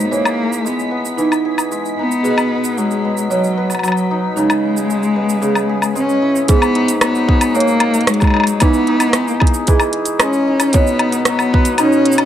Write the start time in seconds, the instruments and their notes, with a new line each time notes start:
Already playing: hammered dulcimer G#2 F#3 G#3 B3 D#4 G#4, synth texture B6
0.05 cello B3
0.11 hammered dulcimer E3, cello A#3, marimba C#5, cabasa
0.25 cabasa, low woodblock
0.53 cabasa
0.65 hammered dulcimer G#3, cello B3, cabasa
0.79 cabasa
0.91 hammered dulcimer B3
1.05 cabasa
1.18 hammered dulcimer E3, marimba D#4, cabasa
1.32 cabasa, low woodblock
1.45 hammered dulcimer G#4
1.58 cabasa, low woodblock
1.72 hammered dulcimer G#3, cabasa
1.85 cabasa
1.99 cello B3, hammered dulcimer D#4
2.11 cabasa
2.23 hammered dulcimer B2, marimba G#4, cabasa
2.38 cabasa, low woodblock
2.64 cabasa
2.78 hammered dulcimer F#3, cello G#3, cabasa
2.91 cabasa
3.05 hammered dulcimer B3
3.17 cabasa
3.30 hammered dulcimer B2, cello F#3, marimba C#5, cabasa
3.44 cabasa
3.58 hammered dulcimer B4
3.70 cabasa, low woodblock
3.75 low woodblock
3.79 low woodblock
3.83 cello F#3, hammered dulcimer F#3, cabasa, low woodblock
3.88 low woodblock
3.92 low woodblock
3.97 cabasa
4.11 hammered dulcimer D#4
4.36 hammered dulcimer C#3, cello G#3, marimba D#4, cabasa
4.50 cabasa, low woodblock
4.77 cabasa
4.90 hammered dulcimer G#3, cabasa
5.03 cabasa
5.16 hammered dulcimer B3
5.29 cabasa
5.42 hammered dulcimer C#3, marimba G#4, cabasa
5.55 cabasa, low woodblock
5.69 hammered dulcimer G#4
5.82 cabasa, low woodblock
5.95 hammered dulcimer G#3, cello C#4, cabasa
6.09 cabasa
6.22 hammered dulcimer E4
6.36 cabasa
6.48 hammered dulcimer G#2, cello B3, marimba G#4, kick, closed hi-hat, cabasa
6.62 cabasa, low woodblock
6.75 hammered dulcimer D#4, closed hi-hat
6.88 closed hi-hat, cabasa
7.01 hammered dulcimer F#3, cello B3, cross-stick, closed hi-hat, cabasa, low woodblock
7.15 cabasa
7.28 hammered dulcimer G#4, kick
7.41 closed hi-hat, cabasa, low woodblock
7.55 hammered dulcimer G#2, cello A#3, marimba C#5, cabasa
7.60 closed hi-hat
7.68 cabasa
7.80 closed hi-hat, low woodblock
7.94 closed hi-hat, cabasa
8.01 closed hi-hat
8.07 hammered dulcimer F#3, cello G#3, cross-stick, closed hi-hat, cabasa
8.14 closed hi-hat
8.20 kick, cabasa, low woodblock
8.24 low woodblock
8.27 low woodblock
8.30 low woodblock
8.34 hammered dulcimer D#4, low woodblock
8.36 low woodblock
8.40 low woodblock
8.44 closed hi-hat, cabasa, low woodblock
8.60 hammered dulcimer E3, cello B3, marimba D#4, kick, closed hi-hat, cabasa, low woodblock
8.74 cabasa
8.87 hammered dulcimer D#4, closed hi-hat
9.00 closed hi-hat, cabasa, low woodblock
9.13 hammered dulcimer G#3, cross-stick, closed hi-hat, cabasa
9.28 cabasa
9.40 hammered dulcimer G#4, kick, low woodblock
9.47 closed hi-hat
9.54 cabasa
9.67 hammered dulcimer E3, marimba G#4, kick, closed hi-hat, cabasa
9.80 cabasa, low woodblock
9.93 closed hi-hat
10.05 closed hi-hat, cabasa
10.20 hammered dulcimer G#3, cello C#4, cross-stick, closed hi-hat, cabasa, low woodblock
10.33 cabasa
10.48 hammered dulcimer D#4
10.60 closed hi-hat, cabasa, low woodblock
10.73 hammered dulcimer B2, cello B3, marimba C#5, kick, closed hi-hat, cabasa
10.87 cabasa
10.99 hammered dulcimer D#4, closed hi-hat, low woodblock
11.12 closed hi-hat, cabasa
11.25 hammered dulcimer F#3, cello B3, cross-stick, closed hi-hat, cabasa
11.39 cabasa, low woodblock
11.53 hammered dulcimer B4, kick
11.65 closed hi-hat, cabasa
11.78 hammered dulcimer B2, cello C#4, marimba D#4, closed hi-hat, cabasa, low woodblock
11.92 cabasa
12.05 closed hi-hat
12.12 cabasa
12.18 closed hi-hat, low woodblock